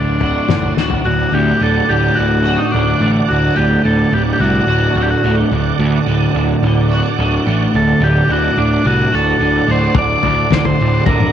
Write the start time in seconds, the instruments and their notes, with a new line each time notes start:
Already playing: picked electric bass D1, clean electric guitar D2 A2 D3 A3, transistor combo organ D4, tonewheel organ D5 F#5 A5 C6
0.21 clean electric guitar F#4, floor tom
0.49 picked electric bass F#1, clean electric guitar D3, snare, mid tom
0.62 floor tom
0.77 picked electric bass D1, clean electric guitar F#4, snare
0.90 floor tom
1.04 picked electric bass D1, clean electric guitar D2, transistor combo organ F#4, tonewheel organ D5 F#5 A5 D6
1.32 picked electric bass D2, clean electric guitar A2, transistor combo organ G4
1.60 picked electric bass D1, clean electric guitar D3, transistor combo organ A4
1.89 picked electric bass D1, clean electric guitar A2, transistor combo organ G4
2.15 picked electric bass D1, clean electric guitar D3, transistor combo organ F#4
2.44 clean electric guitar F#4
2.58 transistor combo organ D#4
2.72 picked electric bass D1, clean electric guitar D3, transistor combo organ D4
3.00 picked electric bass A1, clean electric guitar A3
3.28 picked electric bass D1, clean electric guitar D2, transistor combo organ F#4
3.55 picked electric bass D1, clean electric guitar A2, transistor combo organ G4
3.83 picked electric bass D1, clean electric guitar D3, transistor combo organ A4
4.12 picked electric bass D1, clean electric guitar A2, transistor combo organ G4
4.33 transistor combo organ G4
4.40 picked electric bass C2, clean electric guitar D3, transistor combo organ F#4
4.67 picked electric bass D1, clean electric guitar F#4
4.96 picked electric bass D1, clean electric guitar D3, transistor combo organ F#4
5.02 transistor combo organ G4
5.10 transistor combo organ F#4
5.24 picked electric bass D1, clean electric guitar A3
5.52 picked electric bass D1, clean electric guitar D2
5.79 picked electric bass D2, clean electric guitar A2
6.07 picked electric bass D1, clean electric guitar D3
6.35 picked electric bass D1, clean electric guitar A2
6.62 picked electric bass D1, clean electric guitar D3
6.90 clean electric guitar F#4
7.18 picked electric bass D1, clean electric guitar D3
7.47 picked electric bass A1, clean electric guitar A3
7.74 picked electric bass D1, clean electric guitar D2, transistor combo organ A4
8.00 picked electric bass D1, clean electric guitar A2, transistor combo organ G4
8.29 picked electric bass D1, clean electric guitar D3, transistor combo organ F#4
8.57 picked electric bass D1, clean electric guitar A2, transistor combo organ D4
8.85 picked electric bass C2, clean electric guitar D3, transistor combo organ F#4
9.12 picked electric bass D1, clean electric guitar F#4, transistor combo organ A4
9.40 picked electric bass D1, clean electric guitar D3
9.68 picked electric bass D1, clean electric guitar A3, transistor combo organ C5
9.94 picked electric bass D1, clean electric guitar D2, kick, floor tom
9.99 transistor combo organ D5
10.23 picked electric bass D2, clean electric guitar A2, floor tom
10.51 picked electric bass D1, clean electric guitar D3, transistor combo organ C5, kick, snare
10.58 transistor combo organ D5
10.65 transistor combo organ C5, floor tom
10.80 picked electric bass D1, clean electric guitar A2
11.06 picked electric bass D1, clean electric guitar D3, transistor combo organ A#4, kick, floor tom
11.20 mid tom